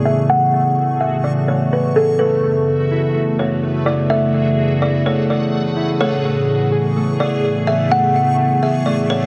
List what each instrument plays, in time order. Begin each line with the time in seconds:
Already playing: ambient pad A2 C#3 E3 B3 G#4, synth keys A3, synth texture A3 G#4 C#6
0.05 synth keys G#4, kalimba E5
0.29 synth keys A3, synth texture F#4, kalimba F#5
0.53 synth keys A3
1.01 synth keys G#4, kalimba E5
1.24 synth keys A3, kalimba D5
1.48 synth keys A3, kalimba C#5
1.73 kalimba B4
1.96 synth keys G#4, kalimba A4
2.19 ambient pad F#2 C#3 A3 G#4, synth keys A3, synth texture G#4 B4 E5, kalimba B4
2.44 synth keys A3
2.92 synth keys E4
3.14 synth keys A3
3.39 synth keys A3, kalimba C#5
3.86 synth keys E4, kalimba D5
4.10 synth keys A3, kalimba E5, synth texture F#5
4.34 synth keys A3
4.82 synth keys E4, kalimba D5
5.06 synth keys A3, kalimba C#5
5.30 synth keys A3, kalimba D5
5.77 synth keys E4
6.01 ambient pad A2 C#3 E3 B3, synth keys A3, synth texture A3 G#4 C#6, kalimba C#5
6.24 synth keys A3
6.72 synth keys G#4
6.97 synth keys A3
7.20 synth keys A3, kalimba D5
7.67 synth keys G#4, kalimba E5
7.91 synth keys A3, kalimba F#5
8.14 synth keys A3
8.63 synth keys G#4, kalimba E5
8.86 synth keys A3, kalimba D5
9.10 synth keys A3, kalimba C#5